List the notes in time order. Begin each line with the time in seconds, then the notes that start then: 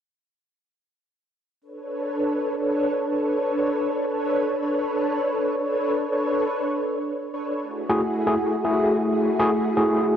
1.61 D4 A4 B4 C#5
3.11 D4 A4 B4 C#5
4.61 D4 A4 B4 C#5
6.11 D4 A4 B4 C#5
7.62 A3 E4 F#4 G#4
7.89 A3 E4 F#4 G#4
8.27 A3 E4 F#4 G#4
8.65 A3 E4 F#4 G#4
9.11 A3 E4 F#4 G#4
9.39 A3 E4 F#4 G#4
9.77 A3 E4 F#4 G#4